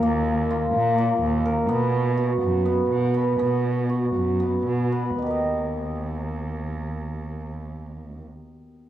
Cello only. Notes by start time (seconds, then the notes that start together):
0.03 D#2
0.75 A#2
1.22 D#2
1.70 B2
2.42 F#2
2.90 B2
3.39 B2
4.15 F#2
4.66 B2
5.19 D#2